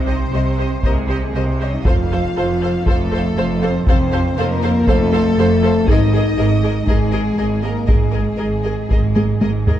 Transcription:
Already playing: double bass section C2, cello section C3, french horn section C4, violin section C5
0.06 viola section G4 C5, violin section D#5
0.32 double bass section C2, cello section C3, viola section G4 C5, violin section D#5
0.58 viola section G4 C5, violin section D#5
0.83 double bass section C2, cello section C3, french horn section A#3, viola section G4 C5, violin section A#4 D#5, taiko
0.95 french horn section G#3, violin section G#4
1.08 french horn section G3, viola section G4 C5, violin section G4 D#5
1.22 french horn section G#3, violin section G#4
1.33 double bass section C2, cello section C3, french horn section A#3, viola section G4 C5, violin section A#4 D#5
1.47 french horn section C4, violin section C5
1.60 french horn section C#4, viola section G4 C5, violin section C#5 D#5
1.73 french horn section D#4, violin section D#5
1.83 double bass section F1, cello section F2, french horn section F4, viola section A4 C5, violin section C5 F5, taiko
2.11 viola section A4 C5, violin section C5 F5
2.36 double bass section F1, cello section F2, viola section A4 C5, violin section C5 F5
2.61 viola section A4 C5, violin section C5 F5
2.86 double bass section F1, cello section F2, french horn section A3, viola section A4 C5, violin section A4 C5 F5, taiko
3.11 viola section A4 C5, violin section C5 F5
3.36 double bass section F1, cello section F2, viola section A4 C5, violin section C5 F5
3.62 french horn section C4, viola section A4 C5, violin section C5 F5
3.86 double bass section F1, cello section F2, french horn section C4, viola section A4 C5, violin section C5 F5, taiko
4.12 viola section A4 C5, violin section C5 F5
4.37 double bass section F1, cello section F2, french horn section A#3, viola section A4 C5, violin section A#4 C5 F5
4.62 viola section A4 C5, violin section C5 F5
4.87 double bass section F1, cello section F2, french horn section A3, violin section A4 C5 F5, viola section A4 C5, taiko
5.12 viola section A4 C5, violin section C5 F5
5.36 double bass section F1, cello section F2, viola section A4 C5, violin section C5 F5
5.63 viola section A4 C5, violin section C5 F5
5.88 double bass section G#1, cello section G#2, french horn section D#4, viola section G#4, violin section A#4 D#5, taiko
6.13 viola section G#4, violin section A#4 D#5
6.37 double bass section G#1, cello section G#2, viola section G#4, violin section A#4 D#5
6.63 viola section G#4, violin section A#4 D#5
6.87 double bass section G#1, cello section G#2, french horn section G#3, violin section G#4 A#4 D#5, viola section G#4, taiko
7.11 viola section G#4, violin section A#4 D#5
7.37 double bass section G#1, cello section G#2, viola section G#4, violin section A#4 D#5
7.62 french horn section A#3, viola section G#4, violin section A#4 D#5
7.87 double bass section G#1, cello section G#2, french horn section G#3, viola section G#4, violin section G#4 A#4 D#5, taiko
8.12 viola section G#4, violin section A#4 D#5
8.37 double bass section G#1, cello section G#2, viola section G#4, violin section A#4 D#5
8.63 viola section G#4, violin section A#4 D#5
8.89 double bass section G#1, cello section G#2, viola section G#4, violin section A#4 D#5, taiko
9.15 viola section G#4, violin section A#4 D#5, taiko high
9.41 double bass section G#1, cello section G#2, viola section G#4, violin section A#4 D#5, taiko high
9.67 viola section G#4, violin section A#4 D#5, taiko low

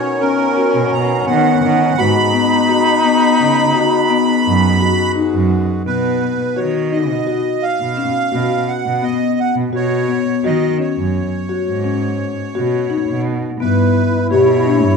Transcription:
Already playing: harmonium B3 D#4 A#4, french horn C#4, accordion C#5
0.21 marimba C#4, accordion A#4
0.57 marimba F#4
0.75 cello B2
0.93 cello B2, accordion A#5
1.27 cello D#3, marimba B3, accordion F#5
1.63 cello D#3
1.98 cello G#2, harmonium G#3 F#4 G#4 B4, french horn D#4, marimba F#4, accordion B5
2.34 marimba B3
2.69 marimba F#4
3.04 marimba B3
3.40 cello C#3
3.75 marimba F#4
4.10 marimba B3
4.46 cello F#2
4.81 marimba F#4
5.16 marimba D#4
5.34 cello F#2
5.86 cello B2, marimba B3, accordion B4
6.56 cello D#3, marimba F#4, accordion C#5
6.92 marimba D#4, accordion D#5
7.10 cello B2
7.27 marimba F#4
7.62 accordion F5
7.80 cello B2
7.97 marimba C#4
8.32 cello B2, marimba F#4
8.68 accordion F#5
8.85 cello B2
9.02 marimba B3, accordion D#5
9.40 accordion F#5
9.55 cello B2
9.73 cello B2, marimba F#4, accordion C#5
10.08 marimba B3
10.44 cello D#3, marimba F#4, accordion D#5
10.79 marimba C#4, accordion C#5
10.97 cello F#2
11.49 marimba F#4
11.67 cello G#2
11.84 marimba C#4
12.55 cello B2, marimba F#4
12.90 marimba D#4
13.08 cello B2
13.60 cello G2, marimba B3, french horn E4, accordion B4
14.31 cello B2, marimba G4, accordion C#5
14.66 marimba D4
14.84 cello G2

